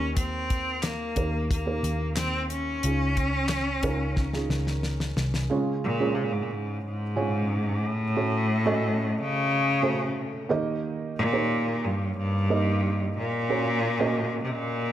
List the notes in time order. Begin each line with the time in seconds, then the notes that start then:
Already playing: D#2 D#3 A#3 C#4 D#4 G4 A#4
0.17 C4, kick, closed hi-hat
0.50 kick, closed hi-hat
0.83 A#3, snare, clap, closed hi-hat
1.16 D#2 A#3 D#4 G4 A#4, kick, closed hi-hat
1.51 A#3, kick, closed hi-hat
1.66 A#3 D#4 G4 A#4
1.83 D#2, closed hi-hat
2.16 C4, snare, clap, closed hi-hat
2.50 C#4, closed hi-hat
2.83 C#2 C#3 C#4 D#4 F4 G#4, closed hi-hat
3.17 kick, closed hi-hat
3.49 snare, clap, closed hi-hat
3.83 C#2 C#4 D#4 F4 A#4, kick, closed hi-hat
4.16 kick, snare
4.33 C#4 D#4 F4 G#4, snare
4.50 C#2, snare
4.67 snare
4.83 snare
5.00 snare
5.17 C2, snare
5.34 snare
5.50 C#3 G#3 C#4 F4 G#4 C#5
5.84 A#2
5.99 G#3 C#4 F4 G#4 C#5
6.14 C3
6.23 A#2
6.33 G#2
6.42 A#2
6.52 G#2
6.86 G#2
7.16 G#3 C#4 F4 G#4 C#5
7.86 A2
8.16 A3 C#4 F#4 A4 C#5
8.66 A3 C#4 F#4 A4 D#5
9.19 C#3
9.82 A3 C#4 F#4 A4 C5
10.49 D#3 A#3 D#4 G4 A#4 D#5
11.17 A#2
11.33 A#3 D#4 G4 A#4 C#5
11.84 G2
12.18 G2
12.50 A#3 D#4 G4 A#4 D#5
13.18 A#2
13.49 A#3 C#4 F#4 A#4 C#5
14.00 A#3 C#4 F#4 A#4 D#5
14.43 C3
14.51 A#2